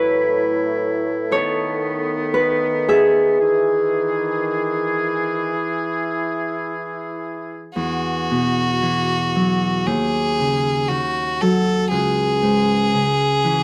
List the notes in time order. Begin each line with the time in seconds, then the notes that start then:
Already playing: A2 F#3 A3 E4 B4 C#5
1.31 D#3 B3 A4 C#5
2.34 B4
2.88 G#4 E5
3.38 D#3 E3 G#4
5.55 E4
7.74 E2 F#4
8.31 B2
8.82 E3
9.35 F#3
9.86 D#2 G#4
10.40 C#3
10.88 D#3 F#4
11.41 F#3 A4
11.89 C#2 G#4
12.42 G#2
12.94 C#3
13.44 E3